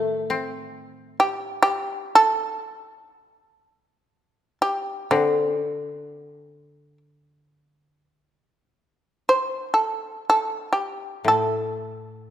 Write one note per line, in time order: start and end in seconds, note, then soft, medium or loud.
0.00 1.74 A2 soft
0.00 1.27 D#3 soft
0.00 1.75 A3 soft
0.00 1.17 A4 medium
0.30 2.21 C4 soft
1.20 1.61 G4 medium
1.63 2.14 G4 medium
2.15 4.58 A4 medium
4.62 5.08 G4 medium
5.11 8.08 D3 medium
5.11 5.45 C4 medium
5.45 5.66 C#4 medium
5.66 6.97 D4 medium
9.29 9.68 C5 medium
9.74 10.24 A4 medium
10.30 10.68 A4 medium
10.73 11.23 G4 medium
11.24 12.30 A2 soft
11.24 12.30 A4 medium